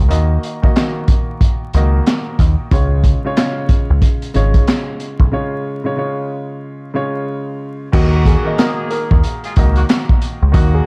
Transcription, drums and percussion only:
0.11 closed hi-hat
0.43 closed hi-hat
0.63 kick
0.76 snare, clap, closed hi-hat
1.08 kick, closed hi-hat
1.41 kick, closed hi-hat
1.73 closed hi-hat
2.06 snare, clap, closed hi-hat
2.39 kick, closed hi-hat
2.71 kick, closed hi-hat
3.04 kick, closed hi-hat
3.37 snare, clap, closed hi-hat
3.69 kick, closed hi-hat
4.02 kick, closed hi-hat
4.22 closed hi-hat
4.34 closed hi-hat
4.54 kick, closed hi-hat
4.67 snare, clap, closed hi-hat
5.00 closed hi-hat
5.20 kick
7.93 kick, crash
8.26 kick, closed hi-hat
8.58 snare, clap, closed hi-hat
8.90 closed hi-hat
9.11 kick
9.23 closed hi-hat
9.44 closed hi-hat
9.56 kick, closed hi-hat
9.76 closed hi-hat
9.89 snare, clap, closed hi-hat
10.09 kick
10.22 closed hi-hat
10.54 kick, closed hi-hat

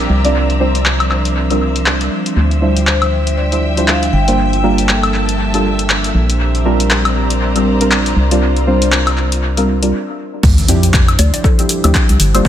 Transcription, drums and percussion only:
0.25 closed hi-hat
0.50 closed hi-hat
0.75 closed hi-hat
0.86 clap
1.00 closed hi-hat, high woodblock
1.11 clap, high woodblock
1.25 closed hi-hat
1.50 closed hi-hat
1.76 closed hi-hat
1.86 clap
2.01 closed hi-hat
2.26 closed hi-hat
2.51 closed hi-hat
2.77 closed hi-hat
2.87 clap
3.02 closed hi-hat, high woodblock
3.27 closed hi-hat
3.52 closed hi-hat
3.77 closed hi-hat
3.88 clap
4.03 closed hi-hat
4.28 closed hi-hat
4.53 closed hi-hat
4.78 closed hi-hat
4.89 clap
5.03 closed hi-hat, high woodblock
5.14 clap
5.29 closed hi-hat
5.54 closed hi-hat
5.79 closed hi-hat
5.90 clap
6.04 closed hi-hat
6.30 closed hi-hat
6.55 closed hi-hat
6.80 closed hi-hat
6.91 clap
7.05 closed hi-hat, high woodblock
7.30 closed hi-hat
7.56 closed hi-hat
7.81 closed hi-hat
7.91 clap
8.06 closed hi-hat
8.31 closed hi-hat
8.57 closed hi-hat
8.82 closed hi-hat
8.92 clap
9.07 closed hi-hat, high woodblock
9.18 clap
9.32 closed hi-hat
9.57 closed hi-hat
9.83 closed hi-hat
10.43 kick, crash, shaker
10.58 closed hi-hat, shaker
10.68 open hi-hat, shaker
10.83 closed hi-hat, shaker
10.94 kick, clap, shaker
11.08 closed hi-hat, high woodblock
11.19 open hi-hat, shaker
11.34 closed hi-hat, shaker
11.44 kick, shaker
11.59 closed hi-hat, shaker
11.69 open hi-hat, shaker
11.84 closed hi-hat, high woodblock, shaker
11.95 kick, clap, shaker
12.09 closed hi-hat
12.20 open hi-hat, shaker
12.35 closed hi-hat, high woodblock, shaker
12.45 kick

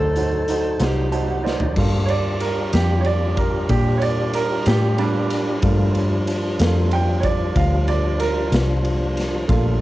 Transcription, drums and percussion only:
0.16 closed hi-hat
0.48 closed hi-hat
0.80 snare, closed hi-hat
1.12 closed hi-hat
1.46 snare
1.60 floor tom
1.76 kick, crash
2.08 ride
2.40 ride
2.73 snare, ride
3.04 ride
3.37 kick, ride
3.69 kick, ride
4.02 ride
4.33 ride
4.66 snare, ride
4.98 ride
5.30 ride
5.62 kick, ride
5.95 ride
6.27 ride
6.59 snare, ride
6.91 ride
7.23 kick, ride
7.56 kick, ride
7.88 ride
8.20 ride
8.52 snare, ride
8.85 ride
9.17 snare, ride
9.49 kick, ride

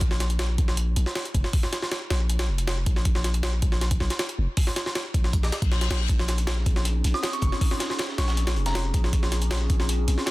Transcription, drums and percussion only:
0.01 kick, closed hi-hat
0.11 snare
0.20 snare, closed hi-hat
0.30 closed hi-hat
0.39 snare, closed hi-hat
0.58 kick, closed hi-hat
0.68 snare
0.77 closed hi-hat
0.96 closed hi-hat
1.06 snare
1.15 snare, closed hi-hat
1.25 closed hi-hat
1.34 kick, closed hi-hat
1.44 snare
1.53 kick, open hi-hat
1.63 snare
1.73 snare, closed hi-hat
1.82 snare
1.92 snare, closed hi-hat
2.10 snare, closed hi-hat
2.29 closed hi-hat
2.39 snare, closed hi-hat
2.58 closed hi-hat
2.68 snare, closed hi-hat
2.86 kick, closed hi-hat
2.96 snare
3.05 kick, closed hi-hat
3.15 snare
3.24 snare, closed hi-hat
3.34 closed hi-hat
3.43 snare, closed hi-hat
3.62 kick, closed hi-hat
3.72 snare
3.81 snare, closed hi-hat
3.91 kick, closed hi-hat
4.00 snare
4.10 snare, closed hi-hat
4.19 snare, closed hi-hat
4.29 closed hi-hat
4.57 kick, open hi-hat
4.67 snare
4.76 snare, closed hi-hat
4.86 snare
4.95 snare, closed hi-hat
5.14 kick, closed hi-hat
5.24 snare
5.33 kick, closed hi-hat
5.43 snare
5.52 snare, closed hi-hat
5.62 kick, closed hi-hat
5.72 snare
5.81 snare, closed hi-hat
5.91 snare, closed hi-hat
6.09 kick, closed hi-hat
6.19 snare
6.28 snare, closed hi-hat
6.38 closed hi-hat
6.47 snare, closed hi-hat
6.66 kick, closed hi-hat
6.76 snare
6.85 closed hi-hat
7.04 closed hi-hat
7.14 snare
7.23 snare, closed hi-hat
7.33 closed hi-hat
7.42 kick, closed hi-hat
7.52 snare
7.61 kick, closed hi-hat, open hi-hat
7.71 snare
7.80 snare, closed hi-hat
7.90 snare
7.98 snare, closed hi-hat
8.09 snare
8.18 snare, closed hi-hat
8.27 snare, closed hi-hat
8.37 closed hi-hat
8.47 snare, closed hi-hat
8.56 closed hi-hat
8.66 snare, closed hi-hat
8.75 snare, closed hi-hat
8.94 kick, closed hi-hat
9.04 snare
9.13 kick, closed hi-hat
9.23 snare
9.32 snare, closed hi-hat
9.41 closed hi-hat
9.51 snare, closed hi-hat
9.70 kick, closed hi-hat
9.80 snare
9.89 closed hi-hat
10.08 closed hi-hat
10.18 snare
10.26 snare, closed hi-hat

